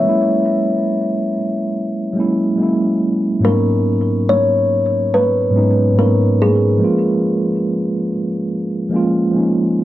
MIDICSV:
0, 0, Header, 1, 3, 480
1, 0, Start_track
1, 0, Key_signature, 5, "minor"
1, 0, Tempo, 845070
1, 22, Time_signature, 4, 2, 24, 8
1, 5589, End_track
2, 0, Start_track
2, 0, Title_t, "Kalimba"
2, 0, Program_c, 0, 108
2, 0, Note_on_c, 0, 76, 94
2, 627, Note_off_c, 0, 76, 0
2, 1958, Note_on_c, 0, 70, 100
2, 2438, Note_on_c, 0, 73, 106
2, 2444, Note_off_c, 0, 70, 0
2, 2919, Note_on_c, 0, 71, 94
2, 2924, Note_off_c, 0, 73, 0
2, 3368, Note_off_c, 0, 71, 0
2, 3401, Note_on_c, 0, 70, 87
2, 3638, Note_off_c, 0, 70, 0
2, 3645, Note_on_c, 0, 68, 77
2, 5531, Note_off_c, 0, 68, 0
2, 5589, End_track
3, 0, Start_track
3, 0, Title_t, "Tine electric piano"
3, 0, Program_c, 1, 4
3, 0, Control_c, 1, 64, 127
3, 12, Note_on_c, 1, 54, 74
3, 22, Note_on_c, 1, 56, 73
3, 28, Control_c, 1, 64, 0
3, 31, Note_on_c, 1, 58, 70
3, 40, Note_on_c, 1, 61, 65
3, 51, Note_on_c, 1, 64, 94
3, 137, Control_c, 1, 64, 127
3, 766, Note_off_c, 1, 54, 0
3, 770, Note_off_c, 1, 56, 0
3, 775, Note_off_c, 1, 58, 0
3, 780, Note_off_c, 1, 61, 0
3, 785, Note_off_c, 1, 64, 0
3, 1211, Note_on_c, 1, 54, 79
3, 1221, Note_on_c, 1, 56, 66
3, 1231, Note_on_c, 1, 58, 66
3, 1241, Note_on_c, 1, 61, 65
3, 1250, Note_on_c, 1, 64, 80
3, 1412, Note_off_c, 1, 54, 0
3, 1417, Note_off_c, 1, 56, 0
3, 1422, Note_off_c, 1, 58, 0
3, 1427, Note_off_c, 1, 61, 0
3, 1431, Note_off_c, 1, 64, 0
3, 1454, Note_on_c, 1, 54, 67
3, 1464, Note_on_c, 1, 56, 67
3, 1473, Note_on_c, 1, 58, 62
3, 1483, Note_on_c, 1, 61, 58
3, 1493, Note_on_c, 1, 64, 66
3, 1848, Note_off_c, 1, 54, 0
3, 1853, Note_off_c, 1, 56, 0
3, 1858, Note_off_c, 1, 58, 0
3, 1863, Note_off_c, 1, 61, 0
3, 1868, Note_off_c, 1, 64, 0
3, 1930, Note_on_c, 1, 44, 68
3, 1938, Note_on_c, 1, 54, 68
3, 1946, Note_on_c, 1, 58, 58
3, 1950, Control_c, 1, 64, 0
3, 1954, Note_on_c, 1, 59, 61
3, 1962, Note_on_c, 1, 61, 70
3, 1969, Note_on_c, 1, 63, 83
3, 2039, Control_c, 1, 64, 127
3, 2684, Note_off_c, 1, 44, 0
3, 2689, Note_off_c, 1, 54, 0
3, 2692, Note_off_c, 1, 58, 0
3, 2696, Note_off_c, 1, 59, 0
3, 2700, Note_off_c, 1, 61, 0
3, 2704, Note_off_c, 1, 63, 0
3, 3123, Note_on_c, 1, 44, 74
3, 3132, Note_on_c, 1, 54, 62
3, 3140, Note_on_c, 1, 56, 71
3, 3148, Note_on_c, 1, 59, 63
3, 3157, Note_on_c, 1, 61, 73
3, 3164, Note_on_c, 1, 63, 86
3, 3328, Note_off_c, 1, 44, 0
3, 3332, Note_off_c, 1, 54, 0
3, 3336, Note_off_c, 1, 56, 0
3, 3340, Note_off_c, 1, 59, 0
3, 3344, Note_off_c, 1, 61, 0
3, 3348, Note_off_c, 1, 63, 0
3, 3366, Note_on_c, 1, 44, 71
3, 3373, Note_on_c, 1, 54, 51
3, 3381, Note_on_c, 1, 58, 56
3, 3391, Note_on_c, 1, 59, 58
3, 3397, Note_on_c, 1, 61, 59
3, 3405, Note_on_c, 1, 63, 75
3, 3764, Note_off_c, 1, 44, 0
3, 3768, Note_off_c, 1, 54, 0
3, 3772, Note_off_c, 1, 58, 0
3, 3777, Note_off_c, 1, 59, 0
3, 3780, Note_off_c, 1, 61, 0
3, 3784, Note_off_c, 1, 63, 0
3, 3847, Note_on_c, 1, 53, 85
3, 3858, Note_on_c, 1, 56, 70
3, 3869, Control_c, 1, 64, 0
3, 3869, Note_on_c, 1, 58, 64
3, 3879, Note_on_c, 1, 61, 63
3, 3888, Note_on_c, 1, 65, 86
3, 3953, Control_c, 1, 64, 127
3, 4603, Note_off_c, 1, 53, 0
3, 4608, Note_off_c, 1, 56, 0
3, 4614, Note_off_c, 1, 58, 0
3, 4619, Note_off_c, 1, 61, 0
3, 4623, Note_off_c, 1, 65, 0
3, 5050, Note_on_c, 1, 53, 78
3, 5060, Note_on_c, 1, 56, 72
3, 5068, Note_on_c, 1, 58, 77
3, 5078, Note_on_c, 1, 61, 75
3, 5090, Note_on_c, 1, 65, 89
3, 5251, Note_off_c, 1, 53, 0
3, 5256, Note_off_c, 1, 56, 0
3, 5260, Note_off_c, 1, 58, 0
3, 5265, Note_off_c, 1, 61, 0
3, 5271, Note_off_c, 1, 65, 0
3, 5289, Note_on_c, 1, 53, 67
3, 5299, Note_on_c, 1, 56, 61
3, 5309, Note_on_c, 1, 58, 60
3, 5318, Note_on_c, 1, 61, 66
3, 5329, Note_on_c, 1, 63, 65
3, 5589, Note_off_c, 1, 53, 0
3, 5589, Note_off_c, 1, 56, 0
3, 5589, Note_off_c, 1, 58, 0
3, 5589, Note_off_c, 1, 61, 0
3, 5589, Note_off_c, 1, 63, 0
3, 5589, End_track
0, 0, End_of_file